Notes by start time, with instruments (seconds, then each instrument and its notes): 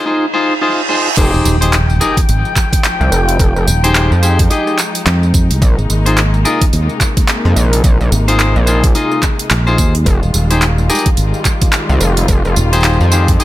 0.06 clean electric guitar D#4 F4 G#4 C5, reverse cymbal
0.34 clean electric guitar D#4 F4 G#4 C5
0.61 clean electric guitar D#4 F4 G#4 C5
0.89 clean electric guitar D#4 F4 G#4 C5
1.17 analog synth bass F1, string section F3 G#3 D#4 G5, clean electric guitar D#4 G4 G#4 C5, kick, closed hi-hat, crash, tambourine, impact
1.34 fingered electric bass D#1, tambourine
1.45 fingered electric bass D#1, tambourine
1.61 clean electric guitar D#4 G4 G#4 C5, closed hi-hat, tambourine
1.73 clap, closed hi-hat, tambourine
1.90 tambourine
2.01 clean electric guitar D#4 G4 G#4 A#4, cross-stick, tambourine
2.17 kick, closed hi-hat, tambourine
2.29 fingered electric bass G#1, closed hi-hat, tambourine
2.45 tambourine
2.56 kick, clap, tambourine
2.73 kick, closed hi-hat, tambourine
2.84 clap, closed hi-hat, tambourine
3.01 analog synth bass C2, tambourine
3.12 analog synth bass F1, tambourine
3.29 closed hi-hat
3.40 analog synth bass F1, kick, closed hi-hat, tambourine
3.56 analog synth bass F1, tambourine
3.67 fingered electric bass D#1, tambourine
3.84 clean electric guitar D#4 G4 G#4 C5, closed hi-hat, tambourine
3.95 clap, closed hi-hat, tambourine
4.12 analog synth bass F2, tambourine
4.23 clean electric guitar D#4 G4 G#4 C5, tambourine
4.39 kick, closed hi-hat, tambourine
4.50 clean electric guitar D#4 G4 G#4 D#5, closed hi-hat, tambourine
4.67 cross-stick, tambourine
4.78 clap, tambourine
4.95 closed hi-hat, tambourine
5.06 fingered electric bass F2, clap, closed hi-hat, tambourine
5.23 tambourine
5.34 kick, tambourine
5.51 fingered electric bass C2, closed hi-hat, tambourine
5.61 analog synth bass A#1, string section C3 A#3, kick, closed hi-hat, tambourine
5.78 fingered electric bass G#1, tambourine
5.90 fingered electric bass G#1, tambourine
6.06 clean electric guitar D#4 F4 G#4 C5, closed hi-hat, tambourine
6.18 clap, closed hi-hat, tambourine
6.34 tambourine
6.45 clean electric guitar D#4 F4 G#4 A#4, cross-stick, tambourine
6.62 kick, closed hi-hat, tambourine
6.73 fingered electric bass D#2, closed hi-hat, tambourine
6.89 tambourine
7.00 kick, clap, tambourine
7.17 kick, closed hi-hat, tambourine
7.28 clap, closed hi-hat, tambourine
7.45 analog synth bass F2, tambourine
7.56 analog synth bass A#1, tambourine
7.73 closed hi-hat, tambourine
7.84 analog synth bass A#1, kick, closed hi-hat, tambourine
8.01 analog synth bass A#1, tambourine
8.12 fingered electric bass G#1, tambourine
8.28 clean electric guitar D#4 F4 G#4 C5, closed hi-hat, tambourine
8.40 clap, closed hi-hat, tambourine
8.56 analog synth bass A#1, tambourine
8.67 clean electric guitar D#4 F4 G#4 C5, tambourine
8.84 kick, closed hi-hat, tambourine
8.95 clean electric guitar D#4 F4 G#4 D#5, closed hi-hat, tambourine
9.11 cross-stick, tambourine
9.23 kick, clap, tambourine
9.39 closed hi-hat, tambourine
9.51 fingered electric bass A#1, clap, closed hi-hat, tambourine
9.67 clean electric guitar D#4 F4 G#4 C5, tambourine
9.78 fingered electric bass D#2, kick, tambourine
9.95 closed hi-hat
10.06 analog synth bass F1, string section D#3 G3 F4, kick, closed hi-hat, tambourine
10.23 fingered electric bass D#1, tambourine
10.34 fingered electric bass D#1, tambourine
10.51 clean electric guitar D#4 G4 G#4 C5, closed hi-hat, tambourine
10.62 clap, closed hi-hat, tambourine
10.78 tambourine
10.90 clean electric guitar D#4 G4 G#4 A#4, cross-stick, tambourine
10.95 tambourine
10.99 tambourine
11.06 kick, closed hi-hat, tambourine
11.17 fingered electric bass G#1, closed hi-hat, tambourine
11.34 tambourine
11.45 kick, clap, tambourine
11.62 kick, closed hi-hat, tambourine
11.73 clap, closed hi-hat, tambourine
11.89 analog synth bass C2, tambourine
12.01 analog synth bass F1, tambourine
12.17 closed hi-hat, tambourine
12.28 analog synth bass F1, kick, closed hi-hat, tambourine
12.45 analog synth bass F1, tambourine
12.56 fingered electric bass D#1, tambourine
12.73 clean electric guitar D#4 G4 G#4 C5, closed hi-hat, tambourine
12.75 tambourine
12.81 clap, closed hi-hat, tambourine
12.84 tambourine
12.93 tambourine
13.00 analog synth bass F2, tambourine
13.12 clean electric guitar D#4 G4 G#4 C5, tambourine
13.28 kick, closed hi-hat, tambourine
13.39 clean electric guitar D#4 G4 G#4 D#5, closed hi-hat, tambourine